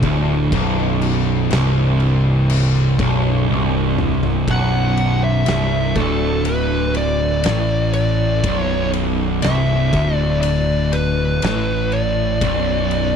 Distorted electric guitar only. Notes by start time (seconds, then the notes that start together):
0.04 D2
0.53 B1
1.53 C2
3.00 B1
3.50 C2
4.49 B1
5.48 C2
5.97 D2
7.47 A2
8.46 B1
9.44 C2
9.93 D2
11.44 A2
12.42 B1